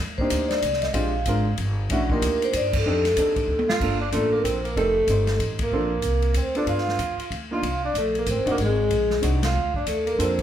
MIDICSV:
0, 0, Header, 1, 7, 480
1, 0, Start_track
1, 0, Tempo, 318640
1, 1424, Time_signature, 3, 2, 24, 8
1, 15701, End_track
2, 0, Start_track
2, 0, Title_t, "Vibraphone"
2, 0, Program_c, 0, 11
2, 270, Note_on_c, 0, 72, 92
2, 725, Note_on_c, 0, 74, 99
2, 771, Note_off_c, 0, 72, 0
2, 1227, Note_on_c, 0, 75, 90
2, 1238, Note_off_c, 0, 74, 0
2, 1405, Note_on_c, 0, 77, 96
2, 1422, Note_off_c, 0, 75, 0
2, 2312, Note_off_c, 0, 77, 0
2, 3210, Note_on_c, 0, 70, 100
2, 3676, Note_off_c, 0, 70, 0
2, 3680, Note_on_c, 0, 72, 103
2, 3828, Note_off_c, 0, 72, 0
2, 3870, Note_on_c, 0, 74, 117
2, 4149, Note_off_c, 0, 74, 0
2, 4184, Note_on_c, 0, 69, 86
2, 5526, Note_off_c, 0, 69, 0
2, 5595, Note_on_c, 0, 77, 100
2, 6066, Note_off_c, 0, 77, 0
2, 6073, Note_on_c, 0, 74, 99
2, 6238, Note_off_c, 0, 74, 0
2, 6269, Note_on_c, 0, 69, 80
2, 6520, Note_off_c, 0, 69, 0
2, 6574, Note_on_c, 0, 70, 91
2, 6714, Note_off_c, 0, 70, 0
2, 6733, Note_on_c, 0, 72, 90
2, 6992, Note_off_c, 0, 72, 0
2, 7068, Note_on_c, 0, 70, 81
2, 7201, Note_off_c, 0, 70, 0
2, 7213, Note_on_c, 0, 69, 83
2, 8092, Note_off_c, 0, 69, 0
2, 8496, Note_on_c, 0, 70, 84
2, 9631, Note_on_c, 0, 72, 86
2, 9639, Note_off_c, 0, 70, 0
2, 9882, Note_off_c, 0, 72, 0
2, 9924, Note_on_c, 0, 74, 80
2, 10084, Note_off_c, 0, 74, 0
2, 10098, Note_on_c, 0, 77, 89
2, 10976, Note_off_c, 0, 77, 0
2, 11347, Note_on_c, 0, 77, 84
2, 11824, Note_off_c, 0, 77, 0
2, 11836, Note_on_c, 0, 74, 87
2, 12001, Note_off_c, 0, 74, 0
2, 12019, Note_on_c, 0, 69, 81
2, 12304, Note_off_c, 0, 69, 0
2, 12339, Note_on_c, 0, 70, 86
2, 12478, Note_off_c, 0, 70, 0
2, 12505, Note_on_c, 0, 72, 91
2, 12788, Note_off_c, 0, 72, 0
2, 12853, Note_on_c, 0, 70, 73
2, 12913, Note_off_c, 0, 70, 0
2, 12984, Note_on_c, 0, 68, 85
2, 13862, Note_off_c, 0, 68, 0
2, 14262, Note_on_c, 0, 77, 84
2, 14680, Note_off_c, 0, 77, 0
2, 14738, Note_on_c, 0, 74, 91
2, 14880, Note_off_c, 0, 74, 0
2, 14955, Note_on_c, 0, 69, 83
2, 15190, Note_off_c, 0, 69, 0
2, 15242, Note_on_c, 0, 70, 87
2, 15374, Note_off_c, 0, 70, 0
2, 15403, Note_on_c, 0, 72, 84
2, 15681, Note_off_c, 0, 72, 0
2, 15701, End_track
3, 0, Start_track
3, 0, Title_t, "Grand piano"
3, 0, Program_c, 1, 0
3, 285, Note_on_c, 1, 58, 64
3, 307, Note_on_c, 1, 60, 63
3, 308, Note_on_c, 1, 63, 62
3, 311, Note_on_c, 1, 62, 64
3, 316, Note_on_c, 1, 67, 74
3, 909, Note_off_c, 1, 58, 0
3, 920, Note_off_c, 1, 60, 0
3, 920, Note_off_c, 1, 63, 0
3, 921, Note_off_c, 1, 62, 0
3, 924, Note_off_c, 1, 67, 0
3, 1402, Note_on_c, 1, 56, 65
3, 1411, Note_on_c, 1, 60, 60
3, 1420, Note_on_c, 1, 62, 56
3, 1423, Note_on_c, 1, 65, 65
3, 1429, Note_on_c, 1, 67, 71
3, 1681, Note_off_c, 1, 56, 0
3, 1685, Note_off_c, 1, 60, 0
3, 1689, Note_off_c, 1, 62, 0
3, 1691, Note_off_c, 1, 65, 0
3, 1694, Note_off_c, 1, 67, 0
3, 1917, Note_on_c, 1, 56, 63
3, 1925, Note_on_c, 1, 60, 59
3, 1929, Note_on_c, 1, 62, 56
3, 1932, Note_on_c, 1, 65, 63
3, 1944, Note_on_c, 1, 70, 66
3, 2177, Note_off_c, 1, 56, 0
3, 2182, Note_off_c, 1, 60, 0
3, 2184, Note_off_c, 1, 62, 0
3, 2185, Note_off_c, 1, 65, 0
3, 2191, Note_off_c, 1, 70, 0
3, 2878, Note_on_c, 1, 57, 77
3, 2878, Note_on_c, 1, 61, 62
3, 2889, Note_on_c, 1, 62, 65
3, 2898, Note_on_c, 1, 64, 68
3, 2898, Note_on_c, 1, 66, 84
3, 3137, Note_off_c, 1, 57, 0
3, 3137, Note_off_c, 1, 61, 0
3, 3142, Note_off_c, 1, 62, 0
3, 3146, Note_off_c, 1, 64, 0
3, 3146, Note_off_c, 1, 66, 0
3, 3181, Note_on_c, 1, 58, 68
3, 3181, Note_on_c, 1, 65, 56
3, 3183, Note_on_c, 1, 62, 59
3, 3186, Note_on_c, 1, 63, 59
3, 3205, Note_on_c, 1, 67, 72
3, 4199, Note_off_c, 1, 58, 0
3, 4199, Note_off_c, 1, 65, 0
3, 4200, Note_off_c, 1, 62, 0
3, 4201, Note_off_c, 1, 63, 0
3, 4211, Note_off_c, 1, 67, 0
3, 4303, Note_on_c, 1, 62, 63
3, 4309, Note_on_c, 1, 60, 69
3, 4309, Note_on_c, 1, 63, 64
3, 4319, Note_on_c, 1, 67, 60
3, 4322, Note_on_c, 1, 69, 71
3, 4567, Note_off_c, 1, 62, 0
3, 4570, Note_off_c, 1, 60, 0
3, 4570, Note_off_c, 1, 63, 0
3, 4575, Note_off_c, 1, 67, 0
3, 4576, Note_off_c, 1, 69, 0
3, 4783, Note_on_c, 1, 60, 53
3, 4785, Note_on_c, 1, 62, 51
3, 4789, Note_on_c, 1, 63, 51
3, 4797, Note_on_c, 1, 67, 50
3, 4802, Note_on_c, 1, 69, 65
3, 5496, Note_off_c, 1, 60, 0
3, 5497, Note_off_c, 1, 62, 0
3, 5499, Note_off_c, 1, 63, 0
3, 5503, Note_off_c, 1, 67, 0
3, 5505, Note_off_c, 1, 69, 0
3, 5743, Note_on_c, 1, 58, 58
3, 5756, Note_on_c, 1, 62, 53
3, 5761, Note_on_c, 1, 69, 68
3, 5767, Note_on_c, 1, 65, 54
3, 6006, Note_off_c, 1, 58, 0
3, 6012, Note_off_c, 1, 62, 0
3, 6015, Note_off_c, 1, 69, 0
3, 6018, Note_off_c, 1, 65, 0
3, 6221, Note_on_c, 1, 62, 56
3, 6224, Note_on_c, 1, 58, 61
3, 6226, Note_on_c, 1, 65, 61
3, 6227, Note_on_c, 1, 69, 74
3, 6935, Note_off_c, 1, 62, 0
3, 6936, Note_off_c, 1, 58, 0
3, 6937, Note_off_c, 1, 65, 0
3, 6938, Note_off_c, 1, 69, 0
3, 7180, Note_on_c, 1, 60, 70
3, 7181, Note_on_c, 1, 63, 61
3, 7188, Note_on_c, 1, 67, 65
3, 7189, Note_on_c, 1, 69, 81
3, 7444, Note_off_c, 1, 60, 0
3, 7445, Note_off_c, 1, 63, 0
3, 7448, Note_off_c, 1, 67, 0
3, 7449, Note_off_c, 1, 69, 0
3, 7667, Note_on_c, 1, 60, 51
3, 7670, Note_on_c, 1, 63, 54
3, 7681, Note_on_c, 1, 67, 52
3, 7693, Note_on_c, 1, 72, 61
3, 8379, Note_off_c, 1, 60, 0
3, 8380, Note_off_c, 1, 63, 0
3, 8385, Note_off_c, 1, 67, 0
3, 8392, Note_off_c, 1, 72, 0
3, 8626, Note_on_c, 1, 60, 71
3, 8633, Note_on_c, 1, 65, 65
3, 8639, Note_on_c, 1, 69, 72
3, 8640, Note_on_c, 1, 62, 66
3, 8888, Note_off_c, 1, 60, 0
3, 8892, Note_off_c, 1, 65, 0
3, 8894, Note_off_c, 1, 69, 0
3, 8895, Note_off_c, 1, 62, 0
3, 9866, Note_on_c, 1, 59, 67
3, 9880, Note_on_c, 1, 62, 60
3, 9890, Note_on_c, 1, 65, 57
3, 9892, Note_on_c, 1, 69, 72
3, 10495, Note_off_c, 1, 59, 0
3, 10502, Note_off_c, 1, 62, 0
3, 10507, Note_off_c, 1, 65, 0
3, 10507, Note_off_c, 1, 69, 0
3, 11313, Note_on_c, 1, 58, 65
3, 11320, Note_on_c, 1, 62, 56
3, 11329, Note_on_c, 1, 63, 57
3, 11335, Note_on_c, 1, 65, 71
3, 11477, Note_off_c, 1, 58, 0
3, 11480, Note_off_c, 1, 62, 0
3, 11485, Note_off_c, 1, 63, 0
3, 11488, Note_off_c, 1, 65, 0
3, 12727, Note_on_c, 1, 60, 72
3, 12737, Note_on_c, 1, 62, 68
3, 12753, Note_on_c, 1, 63, 62
3, 12757, Note_on_c, 1, 66, 82
3, 12905, Note_off_c, 1, 60, 0
3, 12910, Note_off_c, 1, 62, 0
3, 12918, Note_off_c, 1, 63, 0
3, 12920, Note_off_c, 1, 66, 0
3, 13879, Note_on_c, 1, 60, 64
3, 13885, Note_on_c, 1, 62, 57
3, 13905, Note_on_c, 1, 63, 56
3, 13906, Note_on_c, 1, 66, 65
3, 14158, Note_off_c, 1, 60, 0
3, 14161, Note_off_c, 1, 62, 0
3, 14171, Note_off_c, 1, 63, 0
3, 14172, Note_off_c, 1, 66, 0
3, 15337, Note_on_c, 1, 58, 62
3, 15338, Note_on_c, 1, 62, 61
3, 15345, Note_on_c, 1, 65, 53
3, 15361, Note_on_c, 1, 69, 72
3, 15610, Note_off_c, 1, 58, 0
3, 15610, Note_off_c, 1, 62, 0
3, 15613, Note_off_c, 1, 65, 0
3, 15622, Note_off_c, 1, 69, 0
3, 15701, End_track
4, 0, Start_track
4, 0, Title_t, "Tenor saxophone"
4, 0, Program_c, 2, 66
4, 5553, Note_on_c, 2, 65, 92
4, 5998, Note_off_c, 2, 65, 0
4, 6034, Note_on_c, 2, 62, 69
4, 6192, Note_off_c, 2, 62, 0
4, 6201, Note_on_c, 2, 57, 68
4, 6484, Note_off_c, 2, 57, 0
4, 6495, Note_on_c, 2, 58, 73
4, 6671, Note_off_c, 2, 58, 0
4, 6685, Note_on_c, 2, 60, 68
4, 6966, Note_off_c, 2, 60, 0
4, 6981, Note_on_c, 2, 58, 65
4, 7154, Note_off_c, 2, 58, 0
4, 7193, Note_on_c, 2, 57, 86
4, 8082, Note_off_c, 2, 57, 0
4, 8459, Note_on_c, 2, 58, 75
4, 9527, Note_off_c, 2, 58, 0
4, 9593, Note_on_c, 2, 60, 70
4, 9862, Note_off_c, 2, 60, 0
4, 9895, Note_on_c, 2, 62, 73
4, 10053, Note_off_c, 2, 62, 0
4, 10067, Note_on_c, 2, 65, 88
4, 10961, Note_off_c, 2, 65, 0
4, 11330, Note_on_c, 2, 65, 78
4, 11769, Note_off_c, 2, 65, 0
4, 11817, Note_on_c, 2, 62, 71
4, 11975, Note_off_c, 2, 62, 0
4, 12035, Note_on_c, 2, 57, 65
4, 12285, Note_off_c, 2, 57, 0
4, 12324, Note_on_c, 2, 58, 64
4, 12470, Note_off_c, 2, 58, 0
4, 12508, Note_on_c, 2, 60, 67
4, 12762, Note_off_c, 2, 60, 0
4, 12823, Note_on_c, 2, 58, 70
4, 12889, Note_off_c, 2, 58, 0
4, 13011, Note_on_c, 2, 56, 81
4, 13876, Note_off_c, 2, 56, 0
4, 14215, Note_on_c, 2, 65, 76
4, 14655, Note_off_c, 2, 65, 0
4, 14697, Note_on_c, 2, 62, 62
4, 14858, Note_off_c, 2, 62, 0
4, 14874, Note_on_c, 2, 57, 63
4, 15147, Note_off_c, 2, 57, 0
4, 15160, Note_on_c, 2, 58, 60
4, 15330, Note_off_c, 2, 58, 0
4, 15358, Note_on_c, 2, 60, 64
4, 15630, Note_off_c, 2, 60, 0
4, 15701, End_track
5, 0, Start_track
5, 0, Title_t, "Upright bass"
5, 0, Program_c, 3, 32
5, 0, Note_on_c, 3, 39, 81
5, 447, Note_off_c, 3, 39, 0
5, 463, Note_on_c, 3, 38, 90
5, 929, Note_off_c, 3, 38, 0
5, 944, Note_on_c, 3, 36, 86
5, 1404, Note_off_c, 3, 36, 0
5, 1413, Note_on_c, 3, 34, 80
5, 1882, Note_off_c, 3, 34, 0
5, 1896, Note_on_c, 3, 32, 91
5, 2363, Note_off_c, 3, 32, 0
5, 2383, Note_on_c, 3, 31, 87
5, 2846, Note_off_c, 3, 31, 0
5, 2859, Note_on_c, 3, 34, 84
5, 3324, Note_off_c, 3, 34, 0
5, 3341, Note_on_c, 3, 38, 95
5, 3804, Note_off_c, 3, 38, 0
5, 3814, Note_on_c, 3, 43, 90
5, 4280, Note_off_c, 3, 43, 0
5, 4297, Note_on_c, 3, 41, 85
5, 4761, Note_off_c, 3, 41, 0
5, 4771, Note_on_c, 3, 39, 100
5, 5225, Note_off_c, 3, 39, 0
5, 5234, Note_on_c, 3, 38, 85
5, 5708, Note_off_c, 3, 38, 0
5, 5733, Note_on_c, 3, 31, 79
5, 6198, Note_off_c, 3, 31, 0
5, 6214, Note_on_c, 3, 33, 88
5, 6678, Note_off_c, 3, 33, 0
5, 6691, Note_on_c, 3, 34, 80
5, 7157, Note_off_c, 3, 34, 0
5, 7172, Note_on_c, 3, 29, 80
5, 7629, Note_off_c, 3, 29, 0
5, 7639, Note_on_c, 3, 31, 87
5, 8111, Note_off_c, 3, 31, 0
5, 8126, Note_on_c, 3, 33, 85
5, 8595, Note_off_c, 3, 33, 0
5, 8612, Note_on_c, 3, 34, 88
5, 9069, Note_off_c, 3, 34, 0
5, 9078, Note_on_c, 3, 36, 82
5, 9546, Note_off_c, 3, 36, 0
5, 9555, Note_on_c, 3, 38, 83
5, 10030, Note_off_c, 3, 38, 0
5, 10038, Note_on_c, 3, 43, 78
5, 10512, Note_off_c, 3, 43, 0
5, 10527, Note_on_c, 3, 39, 82
5, 10798, Note_off_c, 3, 39, 0
5, 11005, Note_on_c, 3, 38, 82
5, 11476, Note_off_c, 3, 38, 0
5, 11488, Note_on_c, 3, 36, 84
5, 11950, Note_off_c, 3, 36, 0
5, 11959, Note_on_c, 3, 34, 82
5, 12433, Note_off_c, 3, 34, 0
5, 12450, Note_on_c, 3, 33, 87
5, 12593, Note_off_c, 3, 33, 0
5, 12593, Note_on_c, 3, 31, 57
5, 12738, Note_off_c, 3, 31, 0
5, 12747, Note_on_c, 3, 27, 71
5, 12910, Note_off_c, 3, 27, 0
5, 12930, Note_on_c, 3, 32, 79
5, 13400, Note_off_c, 3, 32, 0
5, 13409, Note_on_c, 3, 34, 90
5, 13880, Note_off_c, 3, 34, 0
5, 13899, Note_on_c, 3, 36, 83
5, 14366, Note_off_c, 3, 36, 0
5, 14387, Note_on_c, 3, 38, 79
5, 14845, Note_off_c, 3, 38, 0
5, 14854, Note_on_c, 3, 39, 85
5, 15325, Note_off_c, 3, 39, 0
5, 15349, Note_on_c, 3, 41, 83
5, 15701, Note_off_c, 3, 41, 0
5, 15701, End_track
6, 0, Start_track
6, 0, Title_t, "Muted upright bass strokes"
6, 10807, Note_on_c, 9, 29, 38
6, 10958, Note_off_c, 9, 29, 0
6, 15701, End_track
7, 0, Start_track
7, 0, Title_t, "Drums"
7, 277, Note_on_c, 9, 36, 64
7, 427, Note_off_c, 9, 36, 0
7, 455, Note_on_c, 9, 44, 60
7, 455, Note_on_c, 9, 51, 76
7, 459, Note_on_c, 9, 36, 21
7, 606, Note_off_c, 9, 44, 0
7, 606, Note_off_c, 9, 51, 0
7, 609, Note_off_c, 9, 36, 0
7, 760, Note_on_c, 9, 38, 47
7, 761, Note_on_c, 9, 51, 51
7, 910, Note_off_c, 9, 38, 0
7, 912, Note_off_c, 9, 51, 0
7, 937, Note_on_c, 9, 36, 26
7, 939, Note_on_c, 9, 44, 56
7, 939, Note_on_c, 9, 51, 71
7, 1087, Note_off_c, 9, 36, 0
7, 1090, Note_off_c, 9, 44, 0
7, 1090, Note_off_c, 9, 51, 0
7, 1099, Note_on_c, 9, 38, 31
7, 1231, Note_on_c, 9, 51, 47
7, 1250, Note_off_c, 9, 38, 0
7, 1250, Note_on_c, 9, 38, 43
7, 1381, Note_off_c, 9, 51, 0
7, 1401, Note_off_c, 9, 38, 0
7, 1413, Note_on_c, 9, 36, 26
7, 1415, Note_on_c, 9, 51, 73
7, 1564, Note_off_c, 9, 36, 0
7, 1565, Note_off_c, 9, 51, 0
7, 1891, Note_on_c, 9, 44, 53
7, 1891, Note_on_c, 9, 51, 69
7, 1894, Note_on_c, 9, 36, 19
7, 2042, Note_off_c, 9, 44, 0
7, 2042, Note_off_c, 9, 51, 0
7, 2045, Note_off_c, 9, 36, 0
7, 2373, Note_on_c, 9, 51, 63
7, 2377, Note_on_c, 9, 36, 23
7, 2524, Note_off_c, 9, 51, 0
7, 2528, Note_off_c, 9, 36, 0
7, 2857, Note_on_c, 9, 51, 72
7, 2858, Note_on_c, 9, 36, 27
7, 3008, Note_off_c, 9, 36, 0
7, 3008, Note_off_c, 9, 51, 0
7, 3157, Note_on_c, 9, 36, 67
7, 3308, Note_off_c, 9, 36, 0
7, 3339, Note_on_c, 9, 36, 23
7, 3347, Note_on_c, 9, 44, 57
7, 3347, Note_on_c, 9, 51, 77
7, 3490, Note_off_c, 9, 36, 0
7, 3498, Note_off_c, 9, 44, 0
7, 3498, Note_off_c, 9, 51, 0
7, 3648, Note_on_c, 9, 51, 53
7, 3799, Note_off_c, 9, 51, 0
7, 3815, Note_on_c, 9, 44, 55
7, 3815, Note_on_c, 9, 51, 79
7, 3818, Note_on_c, 9, 36, 21
7, 3966, Note_off_c, 9, 44, 0
7, 3966, Note_off_c, 9, 51, 0
7, 3968, Note_off_c, 9, 36, 0
7, 4115, Note_on_c, 9, 36, 85
7, 4117, Note_on_c, 9, 49, 86
7, 4265, Note_off_c, 9, 36, 0
7, 4267, Note_off_c, 9, 49, 0
7, 4593, Note_on_c, 9, 38, 36
7, 4594, Note_on_c, 9, 51, 53
7, 4743, Note_off_c, 9, 38, 0
7, 4745, Note_off_c, 9, 51, 0
7, 4767, Note_on_c, 9, 36, 21
7, 4769, Note_on_c, 9, 44, 71
7, 4769, Note_on_c, 9, 51, 74
7, 4917, Note_off_c, 9, 36, 0
7, 4920, Note_off_c, 9, 44, 0
7, 4920, Note_off_c, 9, 51, 0
7, 5064, Note_on_c, 9, 51, 49
7, 5066, Note_on_c, 9, 36, 64
7, 5215, Note_off_c, 9, 51, 0
7, 5216, Note_off_c, 9, 36, 0
7, 5408, Note_on_c, 9, 48, 59
7, 5559, Note_off_c, 9, 48, 0
7, 5565, Note_on_c, 9, 38, 88
7, 5716, Note_off_c, 9, 38, 0
7, 5731, Note_on_c, 9, 36, 66
7, 5743, Note_on_c, 9, 49, 67
7, 5882, Note_off_c, 9, 36, 0
7, 5894, Note_off_c, 9, 49, 0
7, 6208, Note_on_c, 9, 36, 21
7, 6212, Note_on_c, 9, 44, 60
7, 6212, Note_on_c, 9, 51, 59
7, 6358, Note_off_c, 9, 36, 0
7, 6363, Note_off_c, 9, 44, 0
7, 6363, Note_off_c, 9, 51, 0
7, 6689, Note_on_c, 9, 36, 21
7, 6702, Note_on_c, 9, 44, 60
7, 6702, Note_on_c, 9, 51, 66
7, 6840, Note_off_c, 9, 36, 0
7, 6853, Note_off_c, 9, 44, 0
7, 6853, Note_off_c, 9, 51, 0
7, 7006, Note_on_c, 9, 51, 44
7, 7156, Note_off_c, 9, 51, 0
7, 7171, Note_on_c, 9, 36, 26
7, 7189, Note_on_c, 9, 51, 58
7, 7322, Note_off_c, 9, 36, 0
7, 7339, Note_off_c, 9, 51, 0
7, 7645, Note_on_c, 9, 44, 53
7, 7645, Note_on_c, 9, 51, 67
7, 7646, Note_on_c, 9, 36, 19
7, 7796, Note_off_c, 9, 44, 0
7, 7796, Note_off_c, 9, 51, 0
7, 7797, Note_off_c, 9, 36, 0
7, 7940, Note_on_c, 9, 38, 48
7, 7941, Note_on_c, 9, 51, 46
7, 8090, Note_off_c, 9, 38, 0
7, 8092, Note_off_c, 9, 51, 0
7, 8124, Note_on_c, 9, 36, 25
7, 8133, Note_on_c, 9, 51, 61
7, 8275, Note_off_c, 9, 36, 0
7, 8283, Note_off_c, 9, 51, 0
7, 8419, Note_on_c, 9, 51, 74
7, 8424, Note_on_c, 9, 36, 75
7, 8569, Note_off_c, 9, 51, 0
7, 8575, Note_off_c, 9, 36, 0
7, 9071, Note_on_c, 9, 44, 57
7, 9071, Note_on_c, 9, 51, 58
7, 9080, Note_on_c, 9, 36, 18
7, 9222, Note_off_c, 9, 44, 0
7, 9222, Note_off_c, 9, 51, 0
7, 9231, Note_off_c, 9, 36, 0
7, 9375, Note_on_c, 9, 51, 43
7, 9526, Note_off_c, 9, 51, 0
7, 9555, Note_on_c, 9, 44, 53
7, 9555, Note_on_c, 9, 51, 67
7, 9561, Note_on_c, 9, 36, 22
7, 9706, Note_off_c, 9, 44, 0
7, 9706, Note_off_c, 9, 51, 0
7, 9711, Note_off_c, 9, 36, 0
7, 9866, Note_on_c, 9, 51, 43
7, 10016, Note_off_c, 9, 51, 0
7, 10043, Note_on_c, 9, 36, 26
7, 10047, Note_on_c, 9, 51, 61
7, 10194, Note_off_c, 9, 36, 0
7, 10197, Note_off_c, 9, 51, 0
7, 10215, Note_on_c, 9, 38, 27
7, 10366, Note_off_c, 9, 38, 0
7, 10370, Note_on_c, 9, 38, 42
7, 10521, Note_off_c, 9, 38, 0
7, 10523, Note_on_c, 9, 36, 20
7, 10527, Note_on_c, 9, 44, 57
7, 10527, Note_on_c, 9, 51, 58
7, 10673, Note_off_c, 9, 36, 0
7, 10678, Note_off_c, 9, 44, 0
7, 10678, Note_off_c, 9, 51, 0
7, 10839, Note_on_c, 9, 51, 46
7, 10990, Note_off_c, 9, 51, 0
7, 11005, Note_on_c, 9, 36, 22
7, 11021, Note_on_c, 9, 51, 58
7, 11156, Note_off_c, 9, 36, 0
7, 11172, Note_off_c, 9, 51, 0
7, 11485, Note_on_c, 9, 36, 25
7, 11498, Note_on_c, 9, 51, 62
7, 11636, Note_off_c, 9, 36, 0
7, 11648, Note_off_c, 9, 51, 0
7, 11964, Note_on_c, 9, 36, 21
7, 11976, Note_on_c, 9, 44, 49
7, 11976, Note_on_c, 9, 51, 58
7, 12115, Note_off_c, 9, 36, 0
7, 12127, Note_off_c, 9, 44, 0
7, 12127, Note_off_c, 9, 51, 0
7, 12278, Note_on_c, 9, 51, 45
7, 12428, Note_off_c, 9, 51, 0
7, 12444, Note_on_c, 9, 36, 20
7, 12450, Note_on_c, 9, 44, 51
7, 12450, Note_on_c, 9, 51, 67
7, 12594, Note_off_c, 9, 36, 0
7, 12600, Note_off_c, 9, 44, 0
7, 12600, Note_off_c, 9, 51, 0
7, 12757, Note_on_c, 9, 51, 46
7, 12907, Note_off_c, 9, 51, 0
7, 12925, Note_on_c, 9, 51, 62
7, 12927, Note_on_c, 9, 36, 27
7, 13076, Note_off_c, 9, 51, 0
7, 13077, Note_off_c, 9, 36, 0
7, 13409, Note_on_c, 9, 36, 26
7, 13416, Note_on_c, 9, 51, 59
7, 13559, Note_off_c, 9, 36, 0
7, 13567, Note_off_c, 9, 51, 0
7, 13715, Note_on_c, 9, 38, 43
7, 13865, Note_off_c, 9, 38, 0
7, 13893, Note_on_c, 9, 36, 22
7, 13899, Note_on_c, 9, 44, 51
7, 13899, Note_on_c, 9, 51, 69
7, 14044, Note_off_c, 9, 36, 0
7, 14049, Note_off_c, 9, 44, 0
7, 14049, Note_off_c, 9, 51, 0
7, 14202, Note_on_c, 9, 38, 76
7, 14204, Note_on_c, 9, 51, 69
7, 14353, Note_off_c, 9, 38, 0
7, 14355, Note_off_c, 9, 51, 0
7, 14676, Note_on_c, 9, 36, 51
7, 14827, Note_off_c, 9, 36, 0
7, 14861, Note_on_c, 9, 44, 62
7, 14861, Note_on_c, 9, 51, 64
7, 15012, Note_off_c, 9, 44, 0
7, 15012, Note_off_c, 9, 51, 0
7, 15169, Note_on_c, 9, 51, 45
7, 15319, Note_off_c, 9, 51, 0
7, 15347, Note_on_c, 9, 36, 20
7, 15360, Note_on_c, 9, 44, 51
7, 15360, Note_on_c, 9, 51, 67
7, 15498, Note_off_c, 9, 36, 0
7, 15511, Note_off_c, 9, 44, 0
7, 15511, Note_off_c, 9, 51, 0
7, 15644, Note_on_c, 9, 36, 48
7, 15646, Note_on_c, 9, 51, 44
7, 15701, Note_off_c, 9, 36, 0
7, 15701, Note_off_c, 9, 51, 0
7, 15701, End_track
0, 0, End_of_file